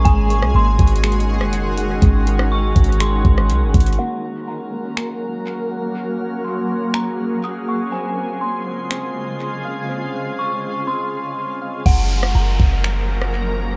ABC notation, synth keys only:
X:1
M:4/4
L:1/8
Q:1/4=122
K:Gblyd
V:1 name="Synth keys"
A, A,2 A, A,3 g | A, A,2 A, A,3 g | B, B,2 B, B,3 g | B, B,2 B, B,3 g |
C C2 C C3 f | C C2 C C3 f | z8 |]